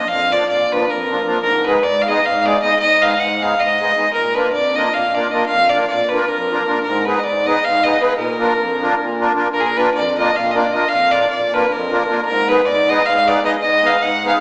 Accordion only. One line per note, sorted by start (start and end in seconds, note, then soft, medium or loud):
0.09 0.40 F2 medium
0.30 0.43 F3 medium
0.30 0.43 A#3 soft
0.30 0.44 D4 soft
0.30 0.44 F4 medium
0.47 0.79 A#2 medium
0.71 0.84 F3 medium
0.71 0.84 A#3 medium
0.71 0.85 D4 medium
0.71 0.85 F4 medium
0.89 1.17 F2 medium
1.09 1.22 F3 medium
1.09 1.22 A#3 soft
1.09 1.22 D4 medium
1.09 1.22 F4 medium
1.26 1.38 F3 medium
1.26 1.38 A#3 soft
1.26 1.39 D4 medium
1.26 1.39 F4 medium
1.43 1.74 G#2 medium
1.66 1.79 G#3 medium
1.66 1.79 B3 soft
1.66 1.79 D#4 soft
1.66 1.80 G#4 medium
1.84 2.15 G#2 medium
2.07 2.20 G#3 medium
2.07 2.20 B3 medium
2.07 2.20 D#4 medium
2.07 2.21 G#4 medium
2.24 2.52 G#2 medium
2.44 2.57 G#3 medium
2.44 2.57 B3 soft
2.44 2.57 D#4 soft
2.44 2.58 G#4 medium
2.62 2.74 G#3 medium
2.62 2.74 B3 soft
2.62 2.74 D#4 medium
2.62 2.75 G#4 medium
2.79 3.10 G#2 medium
3.00 3.13 G#3 soft
3.00 3.14 B3 medium
3.00 3.14 D#4 medium
3.00 3.15 G#4 medium
3.18 3.50 G#2 medium
3.40 3.54 G#3 medium
3.40 3.54 B3 soft
3.40 3.54 D#4 medium
3.40 3.55 G#4 medium
3.59 3.88 G#2 medium
3.80 3.92 G#3 medium
3.80 3.92 B3 soft
3.80 3.92 D#4 soft
3.80 3.93 G#4 medium
3.96 4.08 G#3 soft
3.96 4.08 B3 soft
3.96 4.09 D#4 soft
3.96 4.09 G#4 medium
4.14 4.45 A#2 medium
4.35 4.49 A#3 medium
4.35 4.48 D4 soft
4.35 4.49 F4 soft
4.35 4.49 A#4 medium
4.53 4.84 F2 medium
4.76 4.89 A#3 medium
4.76 4.89 D4 medium
4.76 4.90 F4 medium
4.76 4.90 A#4 medium
4.94 5.23 A#2 medium
5.14 5.27 A#3 medium
5.14 5.27 D4 medium
5.14 5.27 F4 medium
5.14 5.28 A#4 medium
5.32 5.44 A#3 medium
5.32 5.44 D4 soft
5.32 5.44 F4 soft
5.32 5.45 A#4 medium
5.50 5.80 F2 medium
5.73 5.85 A#3 medium
5.73 5.85 D4 medium
5.73 5.85 F4 soft
5.73 5.86 A#4 medium
5.91 6.21 A#2 medium
6.12 6.25 A#3 medium
6.12 6.25 D4 medium
6.12 6.25 F4 medium
6.12 6.26 A#4 medium
6.30 6.58 F2 medium
6.51 6.63 A#3 medium
6.51 6.63 D4 soft
6.51 6.63 F4 medium
6.51 6.64 A#4 medium
6.67 6.79 A#3 medium
6.67 6.79 D4 soft
6.67 6.79 F4 soft
6.67 6.80 A#4 medium
6.84 7.15 G#2 medium
7.07 7.19 B3 medium
7.07 7.20 D#4 medium
7.07 7.20 G#4 medium
7.07 7.20 B4 medium
7.24 7.55 G#2 medium
7.46 7.59 B3 medium
7.46 7.60 D#4 medium
7.46 7.60 G#4 medium
7.46 7.60 B4 medium
7.65 7.93 G#2 medium
7.84 7.97 B3 medium
7.84 7.97 D#4 medium
7.84 7.97 G#4 medium
7.84 7.97 B4 medium
8.00 8.13 B3 medium
8.00 8.13 D#4 soft
8.00 8.14 G#4 soft
8.00 8.14 B4 medium
8.17 8.49 A#2 medium
8.38 8.53 A#3 medium
8.38 8.53 D4 soft
8.38 8.54 F4 soft
8.38 8.54 A#4 medium
8.58 8.90 F2 medium
8.81 8.94 A#3 medium
8.81 8.94 D4 medium
8.81 8.95 F4 medium
8.81 8.95 A#4 medium
8.99 9.28 A#2 medium
9.19 9.32 A#3 medium
9.19 9.32 D4 medium
9.19 9.33 F4 medium
9.19 9.33 A#4 medium
9.35 9.48 A#3 medium
9.35 9.48 D4 medium
9.35 9.48 F4 medium
9.35 9.49 A#4 medium
9.52 9.84 A#2 medium
9.76 9.89 A#3 medium
9.76 9.90 D4 soft
9.76 9.90 F4 medium
9.76 9.90 A#4 medium
9.94 10.26 F2 medium
10.17 10.30 A#3 medium
10.17 10.31 D4 medium
10.17 10.31 F4 medium
10.17 10.31 A#4 medium
10.35 10.64 A#2 medium
10.54 10.67 A#3 medium
10.54 10.67 D4 medium
10.54 10.68 F4 medium
10.54 10.68 A#4 medium
10.71 10.84 A#3 medium
10.71 10.85 D4 medium
10.71 10.85 F4 medium
10.71 10.85 A#4 medium
10.90 11.21 F2 medium
11.12 11.25 A#3 medium
11.12 11.25 D4 medium
11.12 11.25 F4 medium
11.12 11.26 A#4 medium
11.30 11.61 A#2 medium
11.53 11.66 A#3 medium
11.53 11.66 D4 medium
11.53 11.66 F4 medium
11.53 11.66 A#4 medium
11.71 11.99 F2 medium
11.90 12.03 A#3 medium
11.90 12.03 D4 medium
11.90 12.04 F4 medium
11.90 12.04 A#4 medium
12.08 12.20 A#3 medium
12.08 12.21 D4 medium
12.08 12.21 F4 soft
12.08 12.21 A#4 medium
12.26 12.57 G#2 medium
12.48 12.61 B3 medium
12.48 12.61 D#4 medium
12.48 12.61 G#4 medium
12.48 12.62 B4 medium
12.67 12.98 G#2 medium
12.89 13.02 B3 medium
12.89 13.02 D#4 medium
12.89 13.02 G#4 medium
12.89 13.03 B4 medium
13.07 13.35 G#2 medium
13.27 13.39 B3 medium
13.27 13.39 D#4 medium
13.27 13.39 G#4 medium
13.27 13.40 B4 medium
13.43 13.56 B3 medium
13.43 13.56 D#4 soft
13.43 13.56 G#4 medium
13.43 13.57 B4 medium
13.60 13.92 G#2 medium
13.82 13.96 B3 medium
13.82 13.96 D#4 medium
13.82 13.97 G#4 soft
13.82 13.97 B4 medium
14.00 14.32 G#2 medium
14.24 14.37 B3 medium
14.24 14.38 D#4 medium
14.24 14.38 G#4 medium
14.24 14.38 B4 medium